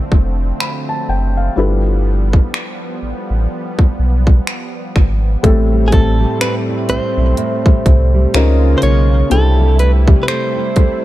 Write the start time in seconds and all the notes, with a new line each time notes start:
Already playing: D3 F3 A3 C4 E4 F4 C5
0.12 F1, kick
0.60 B5, finger snap
0.89 A5
1.09 F#1 G5
1.37 F5
1.56 G1 F3 G3 B3 D4 E4 F4 A4 B4
2.33 kick
2.54 finger snap
3.02 A1
3.30 A1
3.79 kick
3.99 B1
4.27 kick
4.47 finger snap
4.96 G#1, finger snap, kick
5.43 A1 A2 G3 A3 C4 G4 A4, kick, closed hi-hat
5.72 G3
5.88 G#4
5.92 C4 A4, kick, closed hi-hat
6.20 G3
6.41 C4 B4, finger snap, closed hi-hat
6.69 E4
6.89 B1 C4 C5, closed hi-hat
7.17 B1 E4
7.37 A2, closed hi-hat
7.65 G3, kick
7.86 C2 C4, kick, closed hi-hat
8.14 G3
8.34 C#2 C#3 G#3 A#3 C#4 D#4 F4 A#4, finger snap, closed hi-hat
8.62 F4
8.78 C5
8.82 B1 A#3 C#5, closed hi-hat
9.11 F4
9.30 C2 C3 G3 A3 C4 D4 E4 A4, closed hi-hat
9.59 G3
9.79 A3 B4, closed hi-hat
10.08 G3, kick
10.23 B4
10.28 A3 C5, finger snap, closed hi-hat
10.56 E4
10.76 D2 A3, kick, closed hi-hat